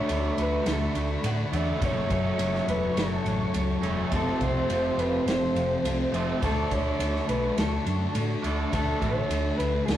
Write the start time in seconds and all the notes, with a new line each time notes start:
Already playing: D3 F#3 A3 D4 F#4 C#5 B5 C#6
0.08 D2 D3 A3 D4, ride
0.37 D2 A3, ride
0.42 B4
0.66 D2 A3, snare, ride
0.70 A4
0.95 D2 A3 D4, ride
1.23 A2 D3 A3 D4 F#5, ride
1.52 E2 D3 F#3 A3 C#4 D4 D5, ride
1.80 F#1 F#2 C#3 F#3 A3 C#4 C#5 A5 C#6, kick, ride
1.85 C#5
2.09 F#1 C#3 F#3 C#5, kick, ride
2.38 F#1 F#2 C#3 F#3 C#4, ride
2.55 snare
2.68 E1 A3 B4, ride
2.96 F#1 A3 A4, snare, ride
3.25 A1 C#3 F#3 C#4, ride
3.54 C#2 F#2 C#3 F#3 A3, ride
3.82 E1 F#2 C#3 F#3 A3 C#4, ride
4.12 F1 F2 C3 F3 A3 C4 F4 A4 C5 C6, kick, ride
4.40 C2 C3 F3 C5, kick, ride
4.69 F1 F2 C3 F3 C4, ride
4.97 F1 A3 B4, ride
5.26 F1 A3 C5, snare, ride
5.55 F1 C3 F3 C4, ride
5.84 C2 F2 C3 F3 A3, ride
6.12 F1 F2 C3 F3 A3 C4, ride
6.41 D2 D3 F#3 A3 D4 F#4 A4 C#6, kick, ride
6.70 D2 A3 D4 C#5, kick, ride
6.99 D2 D3 A3 D4, ride
7.16 snare
7.29 B1 A3 B4, ride
7.57 D2 A3 A4, snare, ride
7.85 F#2 A3 D4, ride
8.14 A2 D3 A3 D4, ride
8.43 D2 D3 F#3 A3 D4, ride
8.72 D2 D3 F#3 A3 D4 A4, kick, ride
9.01 A1 A3 D4 C#5, kick, ride
9.29 D2 D3 A3 D4, ride
9.57 D2 A3 B4, ride
9.86 D2 A3 A4, snare, ride